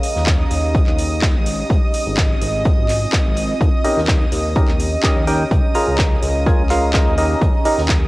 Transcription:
Already playing: ambient pad C#4 G4 F5 A#5, violin section D#5 D#6
0.03 closed hi-hat, open hi-hat
0.16 analog synth bass D#2, snare
0.23 ambient pad D#5, clap
0.27 kick, snare, closed hi-hat
0.51 analog synth bass D#2, closed hi-hat, open hi-hat
0.75 kick, closed hi-hat
0.87 analog synth bass D#2, clap
0.99 closed hi-hat, open hi-hat
1.22 kick, snare, clap, closed hi-hat
1.35 analog synth bass G#1
1.46 ambient pad C4, closed hi-hat, open hi-hat
1.70 analog synth bass G#1, ambient pad F4, kick, closed hi-hat
1.87 ambient pad G#5
1.94 closed hi-hat, open hi-hat
2.06 analog synth bass G#1
2.17 kick, snare, clap, closed hi-hat
2.41 analog synth bass G#1, closed hi-hat, open hi-hat
2.65 kick, closed hi-hat
2.78 analog synth bass G#1
2.89 clap, closed hi-hat, open hi-hat
3.12 kick, snare, clap, closed hi-hat
3.26 analog synth bass G#1
3.36 closed hi-hat, open hi-hat
3.61 analog synth bass D#2, ambient pad C#4, kick, closed hi-hat
3.71 ambient pad G4
3.84 synth stab C#4 D#4 G4 A#4 D#5, closed hi-hat, open hi-hat
3.97 analog synth bass D#2, snare
4.08 kick, snare, clap, closed hi-hat
4.32 analog synth bass D#2, closed hi-hat, open hi-hat
4.47 ambient pad A#5
4.56 synth stab C#4 D#4 G4 A#4 D#5, kick, closed hi-hat
4.68 analog synth bass D#2, clap
4.80 closed hi-hat, open hi-hat
5.03 synth stab C#4 D#4 G4 A#4 D#5, kick, snare, clap, closed hi-hat
5.16 analog synth bass D#2
5.27 synth stab C#4 D#4 G4 A#4 G5, closed hi-hat, open hi-hat
5.51 analog synth bass C#2, kick, closed hi-hat
5.64 ambient pad F5
5.74 synth stab C#4 F4 G#4 A#4 A#5, closed hi-hat, open hi-hat
5.87 analog synth bass C#2
5.98 kick, snare, clap, closed hi-hat
6.22 analog synth bass C#2, closed hi-hat, open hi-hat
6.46 synth stab C#4 F4 G#4 A#4 G#5, kick, closed hi-hat
6.59 analog synth bass C#2
6.70 synth stab C#4 F4 G#4 A#4 F5, clap, closed hi-hat, open hi-hat
6.93 synth stab C#4 F4 G#4 A#4 D#5, kick, snare, clap, closed hi-hat
7.07 analog synth bass D#2
7.18 synth stab C#4 D#4 G4 A#4 D#5, closed hi-hat, open hi-hat
7.31 ambient pad G4
7.41 analog synth bass D#2, kick, closed hi-hat
7.65 synth stab C#4 D#4 G4 A#4 D#5, closed hi-hat, open hi-hat
7.78 analog synth bass D#2, snare
7.89 kick, snare, clap, closed hi-hat

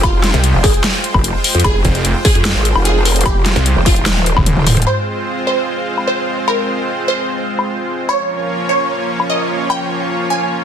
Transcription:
Already playing: wobble bass F1, supersaw synth G#3 F4 C5 G5
0.03 synth pluck F4, kick, closed hi-hat, low woodblock
0.24 snare, closed hi-hat
0.34 detuned saw bass C2, closed hi-hat
0.44 closed hi-hat
0.54 wobble bass F1
0.64 synth pluck G#4, kick, open hi-hat
0.74 closed hi-hat
0.84 snare, closed hi-hat
1.04 closed hi-hat
1.14 wobble bass F1, kick, low woodblock
1.24 closed hi-hat
1.44 open hi-hat
1.55 wobble bass F2, closed hi-hat
1.60 closed hi-hat
1.64 wobble bass F1, synth pluck G#4, kick, low woodblock
1.85 detuned saw bass F1, kick, closed hi-hat
1.95 closed hi-hat
2.05 closed hi-hat
2.25 synth pluck G#4, kick, open hi-hat
2.35 wobble bass F2, closed hi-hat
2.45 snare, closed hi-hat
2.55 wobble bass G#1
2.65 closed hi-hat
2.75 wobble bass F1, low woodblock
2.85 synth pluck G#4, closed hi-hat
3.05 open hi-hat
3.16 closed hi-hat
3.21 closed hi-hat
3.26 synth pluck G4, kick, closed hi-hat, low woodblock
3.46 snare, closed hi-hat
3.56 detuned saw bass C2, closed hi-hat
3.66 closed hi-hat
3.76 wobble bass F1
3.86 synth pluck F4, kick, open hi-hat
3.96 wobble bass D#1, closed hi-hat
4.06 snare, closed hi-hat, high tom
4.16 high tom
4.26 closed hi-hat
4.37 detuned saw bass D#1, kick, mid tom, low woodblock
4.46 closed hi-hat, mid tom
4.57 wobble bass D#1, mid tom
4.67 mid tom, open hi-hat
4.77 closed hi-hat, mid tom
4.82 closed hi-hat
4.87 supersaw synth G#3 C4 F4 C5, synth pluck C5, crash, low woodblock
5.47 synth pluck C5
5.98 low woodblock
6.07 synth pluck C5
6.28 open hi-hat
6.48 synth pluck A#4, low woodblock
7.08 synth pluck C5
7.48 closed hi-hat
7.59 low woodblock
7.89 open hi-hat
7.99 closed hi-hat
8.09 supersaw synth F3 A#3 C#4 F4 C#5, synth pluck C#5, closed hi-hat, low woodblock
8.49 closed hi-hat
8.69 synth pluck C#5
9.20 low woodblock
9.30 synth pluck D#5
9.50 open hi-hat
9.70 synth pluck G5, closed hi-hat, low woodblock
10.30 synth pluck G#5
10.50 closed hi-hat

